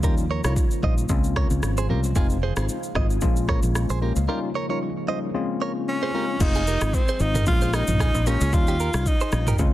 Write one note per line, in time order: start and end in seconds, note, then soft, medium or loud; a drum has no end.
0.00 0.39 D#2 loud
0.00 1.07 C#3 medium
0.00 6.37 F3 medium
0.00 0.24 G3 medium
0.00 1.08 G3 medium
0.00 1.07 A#3 medium
0.00 0.24 C#4 medium
0.00 1.08 D#4 medium
0.00 0.24 D#4 medium
0.00 0.24 F4 loud
0.00 kick loud
0.00 shaker medium
0.04 0.14 G4 medium
0.04 0.14 A#4 medium
0.17 shaker soft
0.31 0.41 A#4 medium
0.31 0.40 C#5 medium
0.44 0.55 C2 medium
0.44 0.64 G3 medium
0.44 0.64 C#4 medium
0.44 0.64 D#4 medium
0.44 0.64 F4 medium
0.44 0.54 A#4 medium
0.44 0.53 C#5 medium
0.44 cross-stick loud
0.44 shaker medium
0.56 kick medium
0.56 shaker medium
0.71 shaker soft
0.83 1.06 A#1 medium
0.83 1.03 G3 medium
0.83 1.03 C#4 medium
0.83 1.04 D#4 medium
0.83 1.04 F4 medium
0.83 0.94 C5 medium
0.83 0.94 D#5 medium
0.83 kick loud
0.98 shaker soft
1.09 1.45 C#2 loud
1.09 2.15 C#3 medium
1.09 1.83 G#3 medium
1.09 4.25 G#3 medium
1.09 1.83 C4 medium
1.09 1.83 C#4 medium
1.09 4.25 F4 medium
1.09 1.84 F4 loud
1.09 3.20 C5 medium
1.09 kick medium
1.09 shaker medium
1.24 shaker medium
1.36 1.47 A#4 medium
1.36 1.47 C#5 medium
1.36 kick loud
1.36 cross-stick loud
1.50 1.61 C#2 loud
1.50 shaker medium
1.63 1.91 G#1 medium
1.63 cross-stick medium
1.63 shaker medium
1.77 1.86 G#4 medium
1.77 1.86 C5 medium
1.77 shaker medium
1.89 2.12 C2 medium
1.89 2.10 G#3 medium
1.89 2.10 C4 medium
1.89 2.10 C#4 medium
1.89 2.10 F4 medium
1.89 2.00 G4 medium
1.89 2.00 A#4 medium
2.04 shaker medium
2.15 2.51 F1 loud
2.15 3.21 D#3 medium
2.15 2.36 G#3 loud
2.15 2.36 C4 medium
2.15 2.36 D#4 medium
2.15 2.36 F4 loud
2.15 2.27 F4 medium
2.15 2.26 G#4 medium
2.15 kick loud
2.15 shaker medium
2.30 shaker soft
2.43 2.53 G#4 medium
2.43 2.53 C5 medium
2.57 2.67 G#1 medium
2.57 2.76 G#3 medium
2.57 2.76 C4 medium
2.57 2.76 D#4 medium
2.57 2.76 F4 medium
2.57 2.66 G#4 medium
2.57 2.66 C5 medium
2.57 cross-stick loud
2.57 shaker medium
2.69 shaker medium
2.83 shaker soft
2.95 3.18 G#1 medium
2.95 3.16 G#3 medium
2.95 3.16 C4 medium
2.95 3.16 D#4 medium
2.95 3.16 F4 medium
2.95 3.06 C5 medium
2.95 3.06 D#5 medium
2.95 kick loud
2.95 cross-stick loud
3.10 shaker medium
3.21 3.57 A#1 loud
3.21 6.37 C#3 medium
3.21 3.96 G#3 medium
3.21 3.96 A#3 medium
3.21 5.32 A#3 medium
3.21 3.96 C#4 medium
3.21 3.96 F4 loud
3.21 kick loud
3.21 shaker medium
3.36 shaker medium
3.49 3.59 A#4 medium
3.49 3.59 C#5 medium
3.49 kick loud
3.49 cross-stick loud
3.63 3.86 A#1 medium
3.63 shaker medium
3.75 cross-stick medium
3.75 shaker medium
3.90 4.12 A#1 medium
3.90 3.99 G#4 medium
3.90 3.98 C5 medium
3.90 shaker medium
4.01 4.22 G#3 medium
4.01 4.22 A#3 medium
4.01 4.22 C#4 medium
4.01 4.22 F4 medium
4.01 4.13 G4 medium
4.01 4.12 A#4 medium
4.16 4.26 C#2 loud
4.16 shaker medium
4.28 4.49 G3 medium
4.28 5.33 G3 medium
4.28 4.49 C#4 medium
4.28 5.33 D#4 medium
4.28 4.49 D#4 medium
4.28 4.49 F4 loud
4.28 4.39 G4 medium
4.28 4.39 A#4 medium
4.55 4.66 A#4 medium
4.55 4.65 C#5 medium
4.69 4.88 G3 medium
4.69 4.88 C#4 medium
4.69 4.89 D#4 medium
4.69 4.89 F4 medium
4.69 4.78 A#4 medium
4.69 4.78 C#5 medium
5.08 5.28 G3 medium
5.08 5.28 C#4 medium
5.08 5.28 D#4 medium
5.08 5.29 F4 medium
5.08 5.19 C5 medium
5.08 5.18 D#5 medium
5.34 6.08 G#3 medium
5.34 6.39 G#3 medium
5.34 6.08 C4 medium
5.34 6.08 C#4 medium
5.34 6.39 F4 medium
5.34 6.08 F4 loud
5.34 6.39 C5 medium
5.62 5.72 A#4 medium
5.62 5.71 C#5 medium
5.89 6.43 C#4 medium
6.03 6.11 G#4 medium
6.03 6.11 C5 medium
6.14 6.34 G#3 medium
6.14 6.34 C4 medium
6.14 6.35 C#4 medium
6.14 6.35 F4 medium
6.14 6.25 G4 medium
6.14 6.24 A#4 medium
6.40 6.76 F1 loud
6.40 6.61 G#3 medium
6.40 6.61 C4 medium
6.40 6.61 D#4 medium
6.40 6.96 D#4 loud
6.40 6.61 F4 loud
6.40 kick loud
6.40 crash loud
6.40 shaker medium
6.55 6.64 F4 medium
6.55 6.64 G#4 medium
6.55 shaker soft
6.67 6.78 G4 medium
6.67 6.77 A#4 medium
6.67 shaker medium
6.81 6.92 G#1 medium
6.81 7.01 G#3 medium
6.81 7.01 C4 medium
6.81 7.01 D#4 medium
6.81 7.01 F4 medium
6.81 cross-stick loud
6.81 shaker loud
6.94 7.23 C4 medium
6.94 kick medium
6.94 shaker medium
7.08 7.17 G#4 medium
7.08 7.17 C5 medium
7.08 shaker medium
7.20 7.43 G#1 loud
7.20 7.41 G#3 medium
7.20 7.41 C4 medium
7.20 7.41 D#4 medium
7.20 7.47 D#4 loud
7.20 7.41 F4 medium
7.20 shaker medium
7.35 7.44 G4 medium
7.35 7.43 A#4 medium
7.35 mid tom loud
7.35 shaker medium
7.46 7.82 A#1 loud
7.46 8.20 G#3 medium
7.46 8.21 A#3 medium
7.46 8.21 C#4 medium
7.46 8.21 F4 loud
7.46 7.76 F4 loud
7.46 kick loud
7.46 shaker medium
7.61 7.70 G#4 medium
7.61 7.70 C5 medium
7.61 shaker medium
7.73 8.29 D#4 loud
7.73 7.84 G4 medium
7.73 7.84 A#4 medium
7.73 cross-stick loud
7.73 shaker medium
7.88 8.11 A#1 medium
7.88 mid tom medium
7.88 shaker loud
8.00 8.11 F4 medium
8.00 8.10 G#4 medium
8.00 kick medium
8.00 cross-stick loud
8.00 shaker medium
8.14 8.37 A#1 medium
8.14 shaker medium
8.26 8.47 G#3 medium
8.26 8.47 A#3 medium
8.26 8.47 C#4 medium
8.26 8.56 C#4 medium
8.26 8.47 F4 medium
8.26 8.37 G4 medium
8.26 8.37 A#4 medium
8.26 shaker medium
8.41 8.51 C#2 loud
8.41 8.50 F4 medium
8.41 8.50 G#4 medium
8.41 shaker loud
8.53 8.88 D#2 loud
8.53 8.73 G3 loud
8.53 8.73 C#4 medium
8.53 8.74 D#4 medium
8.53 8.74 F4 loud
8.53 9.09 F4 loud
8.53 kick loud
8.53 shaker medium
8.67 8.77 D#4 medium
8.67 8.76 G4 medium
8.67 shaker soft
8.80 8.90 G4 medium
8.80 8.90 A#4 medium
8.80 shaker medium
8.94 9.04 C2 medium
8.94 9.13 G3 medium
8.94 9.13 C#4 medium
8.94 9.13 D#4 medium
8.94 9.13 F4 medium
8.94 cross-stick loud
8.94 shaker medium
9.06 9.60 D#4 medium
9.06 kick medium
9.06 shaker medium
9.21 9.30 G#4 medium
9.21 9.29 C5 medium
9.21 shaker medium
9.32 9.55 A#1 medium
9.32 9.53 G3 medium
9.32 9.53 C#4 medium
9.32 9.53 D#4 medium
9.32 9.53 F4 medium
9.32 cross-stick loud
9.32 shaker medium
9.47 9.56 G4 medium
9.47 9.56 A#4 medium
9.47 mid tom loud
9.47 shaker medium
9.58 9.73 C#2 loud
9.58 9.73 G#3 medium
9.58 9.73 C4 medium
9.58 9.73 C#4 medium
9.58 9.73 F4 loud
9.58 kick loud
9.58 shaker medium